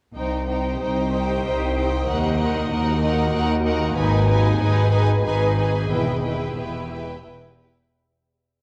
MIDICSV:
0, 0, Header, 1, 8, 480
1, 0, Start_track
1, 0, Key_signature, -3, "minor"
1, 0, Tempo, 636267
1, 118, Time_signature, 3, 2, 24, 8
1, 3476, Tempo, 656455
1, 6411, End_track
2, 0, Start_track
2, 0, Title_t, "Violin section"
2, 0, Program_c, 0, 48
2, 128, Note_on_c, 0, 79, 29
2, 359, Note_off_c, 0, 79, 0
2, 368, Note_on_c, 0, 79, 32
2, 605, Note_off_c, 0, 79, 0
2, 617, Note_on_c, 0, 79, 30
2, 843, Note_off_c, 0, 79, 0
2, 853, Note_on_c, 0, 79, 34
2, 1087, Note_off_c, 0, 79, 0
2, 1100, Note_on_c, 0, 79, 36
2, 1331, Note_off_c, 0, 79, 0
2, 1339, Note_on_c, 0, 79, 35
2, 1570, Note_off_c, 0, 79, 0
2, 1575, Note_on_c, 0, 78, 41
2, 1805, Note_off_c, 0, 78, 0
2, 1814, Note_on_c, 0, 78, 36
2, 2039, Note_off_c, 0, 78, 0
2, 2048, Note_on_c, 0, 78, 42
2, 2274, Note_off_c, 0, 78, 0
2, 2283, Note_on_c, 0, 78, 47
2, 2510, Note_off_c, 0, 78, 0
2, 2519, Note_on_c, 0, 78, 47
2, 2752, Note_off_c, 0, 78, 0
2, 2765, Note_on_c, 0, 78, 39
2, 2993, Note_on_c, 0, 80, 51
2, 2995, Note_off_c, 0, 78, 0
2, 3229, Note_off_c, 0, 80, 0
2, 3237, Note_on_c, 0, 80, 49
2, 3472, Note_off_c, 0, 80, 0
2, 3480, Note_on_c, 0, 80, 48
2, 3697, Note_off_c, 0, 80, 0
2, 3706, Note_on_c, 0, 80, 49
2, 3934, Note_off_c, 0, 80, 0
2, 3943, Note_on_c, 0, 80, 45
2, 4180, Note_off_c, 0, 80, 0
2, 4192, Note_on_c, 0, 80, 35
2, 4425, Note_off_c, 0, 80, 0
2, 4434, Note_on_c, 0, 79, 40
2, 4662, Note_off_c, 0, 79, 0
2, 4671, Note_on_c, 0, 79, 36
2, 4911, Note_off_c, 0, 79, 0
2, 4927, Note_on_c, 0, 79, 31
2, 5156, Note_off_c, 0, 79, 0
2, 5165, Note_on_c, 0, 79, 34
2, 5397, Note_off_c, 0, 79, 0
2, 5406, Note_on_c, 0, 79, 34
2, 5637, Note_off_c, 0, 79, 0
2, 5646, Note_on_c, 0, 79, 29
2, 5879, Note_off_c, 0, 79, 0
2, 6411, End_track
3, 0, Start_track
3, 0, Title_t, "Violin section"
3, 0, Program_c, 1, 48
3, 122, Note_on_c, 1, 72, 29
3, 358, Note_off_c, 1, 72, 0
3, 367, Note_on_c, 1, 72, 27
3, 604, Note_off_c, 1, 72, 0
3, 616, Note_on_c, 1, 72, 33
3, 844, Note_off_c, 1, 72, 0
3, 853, Note_on_c, 1, 72, 33
3, 1087, Note_off_c, 1, 72, 0
3, 1098, Note_on_c, 1, 72, 36
3, 1327, Note_off_c, 1, 72, 0
3, 1336, Note_on_c, 1, 72, 32
3, 1568, Note_off_c, 1, 72, 0
3, 1571, Note_on_c, 1, 70, 36
3, 1802, Note_off_c, 1, 70, 0
3, 1811, Note_on_c, 1, 70, 37
3, 2037, Note_off_c, 1, 70, 0
3, 2046, Note_on_c, 1, 70, 42
3, 2272, Note_off_c, 1, 70, 0
3, 2281, Note_on_c, 1, 70, 44
3, 2508, Note_off_c, 1, 70, 0
3, 2517, Note_on_c, 1, 70, 51
3, 2746, Note_off_c, 1, 70, 0
3, 2755, Note_on_c, 1, 70, 48
3, 2989, Note_off_c, 1, 70, 0
3, 2995, Note_on_c, 1, 71, 49
3, 3219, Note_off_c, 1, 71, 0
3, 3228, Note_on_c, 1, 71, 45
3, 3465, Note_off_c, 1, 71, 0
3, 3474, Note_on_c, 1, 71, 52
3, 3703, Note_off_c, 1, 71, 0
3, 3711, Note_on_c, 1, 71, 51
3, 3942, Note_off_c, 1, 71, 0
3, 3950, Note_on_c, 1, 71, 49
3, 4178, Note_off_c, 1, 71, 0
3, 4187, Note_on_c, 1, 71, 37
3, 4420, Note_off_c, 1, 71, 0
3, 4429, Note_on_c, 1, 71, 31
3, 4667, Note_off_c, 1, 71, 0
3, 4676, Note_on_c, 1, 71, 29
3, 4908, Note_off_c, 1, 71, 0
3, 4917, Note_on_c, 1, 71, 34
3, 5150, Note_off_c, 1, 71, 0
3, 5159, Note_on_c, 1, 71, 35
3, 5392, Note_off_c, 1, 71, 0
3, 5401, Note_on_c, 1, 71, 35
3, 5636, Note_off_c, 1, 71, 0
3, 5645, Note_on_c, 1, 71, 34
3, 5879, Note_off_c, 1, 71, 0
3, 6411, End_track
4, 0, Start_track
4, 0, Title_t, "Ambient pad"
4, 0, Program_c, 2, 92
4, 122, Note_on_c, 2, 67, 45
4, 122, Note_on_c, 2, 72, 47
4, 122, Note_on_c, 2, 75, 49
4, 1542, Note_off_c, 2, 67, 0
4, 1542, Note_off_c, 2, 72, 0
4, 1570, Note_on_c, 2, 66, 50
4, 1571, Note_on_c, 2, 70, 55
4, 2991, Note_on_c, 2, 68, 53
4, 2995, Note_off_c, 2, 66, 0
4, 2996, Note_off_c, 2, 70, 0
4, 2997, Note_on_c, 2, 71, 59
4, 4400, Note_off_c, 2, 75, 0
4, 4418, Note_on_c, 2, 67, 54
4, 4420, Note_on_c, 2, 76, 49
4, 4425, Note_off_c, 2, 68, 0
4, 5877, Note_off_c, 2, 67, 0
4, 5879, Note_off_c, 2, 76, 0
4, 5883, Note_off_c, 2, 71, 0
4, 6411, End_track
5, 0, Start_track
5, 0, Title_t, "Viola section"
5, 0, Program_c, 3, 48
5, 122, Note_on_c, 3, 63, 35
5, 356, Note_off_c, 3, 63, 0
5, 365, Note_on_c, 3, 63, 31
5, 598, Note_off_c, 3, 63, 0
5, 607, Note_on_c, 3, 63, 34
5, 843, Note_off_c, 3, 63, 0
5, 852, Note_on_c, 3, 63, 35
5, 1080, Note_off_c, 3, 63, 0
5, 1089, Note_on_c, 3, 63, 41
5, 1320, Note_off_c, 3, 63, 0
5, 1329, Note_on_c, 3, 63, 32
5, 1559, Note_off_c, 3, 63, 0
5, 1568, Note_on_c, 3, 63, 42
5, 1797, Note_off_c, 3, 63, 0
5, 1806, Note_on_c, 3, 63, 41
5, 2034, Note_off_c, 3, 63, 0
5, 2043, Note_on_c, 3, 63, 53
5, 2273, Note_off_c, 3, 63, 0
5, 2283, Note_on_c, 3, 63, 49
5, 2506, Note_off_c, 3, 63, 0
5, 2515, Note_on_c, 3, 63, 53
5, 2746, Note_off_c, 3, 63, 0
5, 2755, Note_on_c, 3, 63, 41
5, 2987, Note_off_c, 3, 63, 0
5, 2996, Note_on_c, 3, 63, 58
5, 3221, Note_off_c, 3, 63, 0
5, 3230, Note_on_c, 3, 63, 51
5, 3465, Note_off_c, 3, 63, 0
5, 3474, Note_on_c, 3, 63, 58
5, 3697, Note_off_c, 3, 63, 0
5, 3706, Note_on_c, 3, 63, 48
5, 3935, Note_off_c, 3, 63, 0
5, 3944, Note_on_c, 3, 63, 48
5, 4174, Note_off_c, 3, 63, 0
5, 4183, Note_on_c, 3, 63, 34
5, 4421, Note_off_c, 3, 63, 0
5, 4421, Note_on_c, 3, 64, 41
5, 4658, Note_off_c, 3, 64, 0
5, 4667, Note_on_c, 3, 64, 34
5, 4903, Note_off_c, 3, 64, 0
5, 4912, Note_on_c, 3, 64, 40
5, 5149, Note_off_c, 3, 64, 0
5, 5158, Note_on_c, 3, 64, 33
5, 5392, Note_off_c, 3, 64, 0
5, 5401, Note_on_c, 3, 64, 39
5, 5635, Note_off_c, 3, 64, 0
5, 5644, Note_on_c, 3, 64, 30
5, 5878, Note_off_c, 3, 64, 0
5, 6411, End_track
6, 0, Start_track
6, 0, Title_t, "Cello section"
6, 0, Program_c, 4, 48
6, 118, Note_on_c, 4, 36, 44
6, 549, Note_off_c, 4, 36, 0
6, 608, Note_on_c, 4, 36, 39
6, 1034, Note_off_c, 4, 36, 0
6, 1089, Note_on_c, 4, 36, 40
6, 1513, Note_off_c, 4, 36, 0
6, 1569, Note_on_c, 4, 39, 48
6, 1990, Note_off_c, 4, 39, 0
6, 2045, Note_on_c, 4, 39, 50
6, 2464, Note_off_c, 4, 39, 0
6, 2513, Note_on_c, 4, 39, 55
6, 2935, Note_off_c, 4, 39, 0
6, 2987, Note_on_c, 4, 44, 62
6, 3415, Note_off_c, 4, 44, 0
6, 3471, Note_on_c, 4, 44, 61
6, 3890, Note_off_c, 4, 44, 0
6, 3940, Note_on_c, 4, 44, 52
6, 4367, Note_off_c, 4, 44, 0
6, 4426, Note_on_c, 4, 40, 41
6, 4857, Note_off_c, 4, 40, 0
6, 4913, Note_on_c, 4, 40, 39
6, 5343, Note_off_c, 4, 40, 0
6, 5399, Note_on_c, 4, 40, 36
6, 5825, Note_off_c, 4, 40, 0
6, 6411, End_track
7, 0, Start_track
7, 0, Title_t, "Synth drone"
7, 0, Program_c, 5, 95
7, 117, Note_on_c, 5, 36, 61
7, 1539, Note_off_c, 5, 36, 0
7, 1564, Note_on_c, 5, 39, 62
7, 2991, Note_on_c, 5, 32, 66
7, 2992, Note_off_c, 5, 39, 0
7, 4423, Note_on_c, 5, 40, 67
7, 4426, Note_off_c, 5, 32, 0
7, 5880, Note_off_c, 5, 40, 0
7, 6411, End_track
8, 0, Start_track
8, 0, Title_t, "Double bass section"
8, 0, Program_c, 6, 48
8, 119, Note_on_c, 6, 36, 38
8, 550, Note_off_c, 6, 36, 0
8, 610, Note_on_c, 6, 36, 38
8, 1035, Note_off_c, 6, 36, 0
8, 1089, Note_on_c, 6, 36, 39
8, 1513, Note_off_c, 6, 36, 0
8, 1565, Note_on_c, 6, 39, 53
8, 1988, Note_off_c, 6, 39, 0
8, 2044, Note_on_c, 6, 39, 52
8, 2463, Note_off_c, 6, 39, 0
8, 2516, Note_on_c, 6, 39, 53
8, 2937, Note_off_c, 6, 39, 0
8, 2990, Note_on_c, 6, 32, 65
8, 3416, Note_off_c, 6, 32, 0
8, 3471, Note_on_c, 6, 32, 57
8, 3890, Note_off_c, 6, 32, 0
8, 3948, Note_on_c, 6, 32, 51
8, 4370, Note_off_c, 6, 32, 0
8, 4425, Note_on_c, 6, 28, 46
8, 4857, Note_off_c, 6, 28, 0
8, 4914, Note_on_c, 6, 28, 43
8, 5343, Note_off_c, 6, 28, 0
8, 5399, Note_on_c, 6, 28, 39
8, 5825, Note_off_c, 6, 28, 0
8, 6411, End_track
0, 0, End_of_file